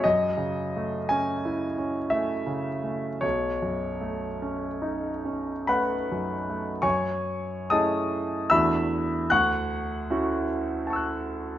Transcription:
0.04 F#2 D#5
0.37 C#3
0.76 A3
1.09 C#4 G#5
1.45 E4
1.78 C#4
2.10 A3 E5
2.46 C#3
2.83 A3
3.21 B1 C#5
3.62 F#2
4.01 A3
4.42 C#4
4.82 D#4
5.25 C#4
5.67 A3 B4 F#5 B5
6.12 F#2
6.49 A3
6.82 F#2 C#5 G#5 C#6
7.70 A3 C#4 E4 G#4 D#5 A5 D#6
8.50 E2 A3 D4 E4 F#4 E5 B5 E6
9.30 D2 F#5 C#6 F#6
10.10 A3 C#4 E4 F#4
10.87 A5 C#6
10.93 E6 F#6

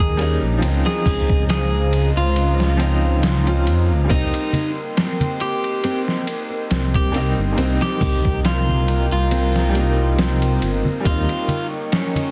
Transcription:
Already playing: D#2 A#3 D#4 A#4 D#5 G5 A#5
0.00 G#4
0.17 G3 A#3 C#4, ride
0.22 D#4
0.42 A#1
0.58 F3 C4
0.62 C#2 C#4 C5 F5, ride
0.68 D#4
0.86 G#4, snare
1.06 C#2, kick, open hi-hat
1.29 kick
1.49 G#4, snare, ride
1.93 ride
2.16 C#2 F4
2.36 ride
2.60 snare
2.77 C#2 F3 C4 C#4, ride
2.82 D#4
3.23 snare, ride
3.44 F3 C4 C#4, ride
3.48 F4
3.66 F2, ride
3.90 C#2
4.04 G3 A#3
4.09 C2 C4 D#4 A#4 G5 C6, kick, ride, shaker
4.14 D#4
4.34 ride, shaker
4.53 ride, low conga
4.77 shaker
4.97 C4, snare, ride, shaker
5.20 ride, low conga, shaker
5.40 G4, ride
5.63 ride, shaker
5.83 C4, ride, shaker
6.06 snare, shaker
6.27 ride
6.50 shaker
6.70 C2 C4, snare, ride, shaker
6.94 G4, kick, shaker
7.12 G3 A#3 C4, ride
7.17 D#4
7.37 G1, shaker
7.53 G3 A#3
7.57 C2 C4 A#5, ride, shaker
7.62 D#4
7.81 G4, snare, shaker
8.01 C2, kick, open hi-hat, low conga
8.24 kick, shaker
8.44 C4 F4, snare, ride, shaker
8.67 low conga, shaker
8.88 ride
9.11 C2 F4, shaker
9.31 C4, ride, shaker
9.55 snare, shaker
9.70 G3 A#3
9.75 C4, ride
9.80 D#4
9.98 shaker
10.17 C4, snare, ride, shaker
10.42 ride, shaker
10.62 G1, ride
10.85 low conga, shaker
11.00 G3 A#3
11.05 D#2 C4 F4 D#5 C#6, kick, ride, shaker
11.10 D#4
11.29 ride, shaker
11.48 ride, low conga
11.72 shaker
11.92 C#4, snare, ride, shaker
12.15 ride, low conga, shaker

